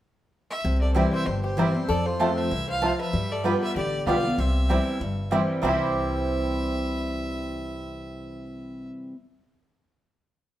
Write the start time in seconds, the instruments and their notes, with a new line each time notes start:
0.51 fiddle E5
0.64 upright bass C2, steel-string acoustic guitar C3
0.81 resonator guitar played with a steel bar A4, fiddle D5
0.94 steel-string acoustic guitar E3 G3 C4 E4, five-string banjo G3 C4 E4, mandolin C4 E4 C5 G5, resonator guitar played with a steel bar G4, fiddle C5
1.13 resonator guitar played with a steel bar C5, fiddle E5
1.26 upright bass G1, steel-string acoustic guitar G2, resonator guitar played with a steel bar G4, fiddle C5
1.44 resonator guitar played with a steel bar G4, fiddle C5
1.57 steel-string acoustic guitar E3 G3 C4 E4, five-string banjo G3 C4 E4, mandolin C4 E4 C5 G5
1.74 steel-string acoustic guitar C4 E4
1.88 steel-string acoustic guitar F2, upright bass F2, resonator guitar played with a steel bar A4, fiddle D5
2.06 resonator guitar played with a steel bar F4, fiddle C5
2.19 steel-string acoustic guitar F3 A3 C4 F4, five-string banjo A3 C4 F4, mandolin C4 F4 C5 A5
2.36 resonator guitar played with a steel bar C5, fiddle E5
2.51 upright bass C2, steel-string acoustic guitar E3
2.68 resonator guitar played with a steel bar C5, fiddle F5
2.81 steel-string acoustic guitar F3, five-string banjo A3 C4 F4, mandolin C4 F4 C5 A5
2.99 resonator guitar played with a steel bar B4, fiddle E5
3.13 upright bass G2, steel-string acoustic guitar G3
3.32 resonator guitar played with a steel bar A4, fiddle D5
3.43 steel-string acoustic guitar G3 B3 F4, five-string banjo G3 B3 D4, mandolin B3 F4 B4 G5, resonator guitar played with a steel bar G4, fiddle B4
3.63 resonator guitar played with a steel bar B4, fiddle E5
3.76 upright bass A1, steel-string acoustic guitar D3, resonator guitar played with a steel bar G4, fiddle D5
4.06 upright bass B1, five-string banjo G3 B3 D4, steel-string acoustic guitar G3 B3 F4, mandolin B3 F4 B4 G5, resonator guitar played with a steel bar D5, fiddle F5
4.25 steel-string acoustic guitar B3 F4
4.38 upright bass C2, steel-string acoustic guitar C3, resonator guitar played with a steel bar C5, fiddle E5
4.69 steel-string acoustic guitar E3 G3 C4 E4, five-string banjo G3 C4 E4, mandolin C4 E4 C5 G5
5.00 upright bass G1, steel-string acoustic guitar G2
5.31 steel-string acoustic guitar E3 G3 C4 E4, five-string banjo G3 C4 E4, mandolin C4 E4 C5 G5
5.61 upright bass C2, steel-string acoustic guitar C3 E3 G3 C4 E4, five-string banjo G3 C4, mandolin C4 E4 C5 G5, resonator guitar played with a steel bar C5, fiddle E5
5.67 five-string banjo E4 G4